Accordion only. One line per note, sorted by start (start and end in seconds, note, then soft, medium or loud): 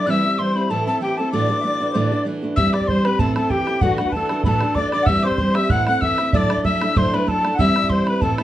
0.10 0.41 E5 medium
0.41 0.69 C5 medium
0.71 0.80 A4 medium
0.82 0.90 A4 medium
0.92 1.01 A4 medium
1.02 1.19 G4 medium
1.19 1.33 A4 medium
1.33 1.58 D5 medium
1.61 1.89 D5 medium
1.61 1.64 E5 soft
1.92 1.95 C5 soft
1.96 2.25 D5 medium
2.57 2.74 E5 medium
2.74 2.89 D5 medium
2.89 3.06 C5 medium
3.04 3.20 B4 medium
3.20 3.34 A4 medium
3.36 3.51 A4 medium
3.49 3.82 G4 medium
3.83 4.08 F#4 medium
4.06 4.13 B4 medium
4.13 4.43 A4 medium
4.45 4.77 A4 medium
4.76 4.90 D5 medium
4.92 5.04 D5 medium
5.03 5.24 E5 loud
5.03 5.07 F#5 medium
5.24 5.56 C5 medium
5.55 5.70 E5 loud
5.71 5.85 F#5 medium
5.87 6.02 F#5 medium
6.02 6.34 E5 medium
6.34 6.63 D5 loud
6.65 6.97 E5 medium
6.96 7.13 C5 medium
7.13 7.28 B4 medium
7.27 7.50 A4 medium
7.53 7.59 F#5 medium
7.59 7.92 E5 medium
7.92 8.07 C5 medium
8.08 8.21 B4 medium
8.22 8.43 A4 medium